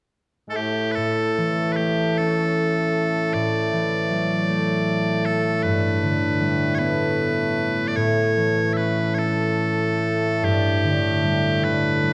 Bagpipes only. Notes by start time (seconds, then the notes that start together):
0.50 A2 A3 A4
0.56 G4
0.91 A4 B4
1.72 G4 B4
2.18 A4
3.34 D5
5.25 A4
5.63 B4
6.75 B4 C#5
7.88 D5
7.96 C#5
8.73 B4 E5
9.14 C#5
9.18 A4
10.44 G4
11.64 B4